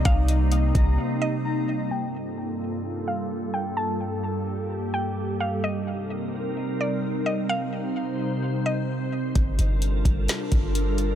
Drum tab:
HH |xxxx----|--------|--------|--------|
SD |--------|--------|--------|--------|
BD |o--o----|--------|--------|--------|

HH |--------|xxxxxxxx|
SD |--------|----o---|
BD |--------|o--o-o--|